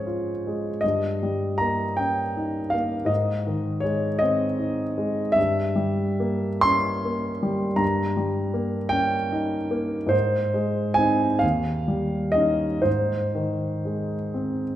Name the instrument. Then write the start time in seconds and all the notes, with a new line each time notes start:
grand piano
Already playing: G#2 F3 G#3 C#4 C5 C#5
0.07 F4
0.47 G#3
0.81 G2 D#5
1.23 G3
1.58 A#3 A#5
1.97 C#4 G5
2.37 D#4
2.70 F5
2.74 A#3
3.05 G#2 D#5
3.47 D#3
3.80 G#3 C#5
4.19 C4 D#5
4.59 D#4
4.98 G#3
5.32 G2 E5
5.76 G3
6.20 A#3
6.61 C#4 C6
7.05 A#3
7.43 G3
7.76 G2 A#5
8.17 G3
8.54 A#3
8.89 C#4 G5
9.32 D#4
9.71 A#3
10.07 G#2 C5
10.54 G#3
10.94 C4 G#5
10.98 D#4
11.39 D#2 F5
11.88 G3
12.32 C#4 D#5
12.36 D#4
12.82 G#2 C5
13.35 D#3
13.85 G#3
14.34 C4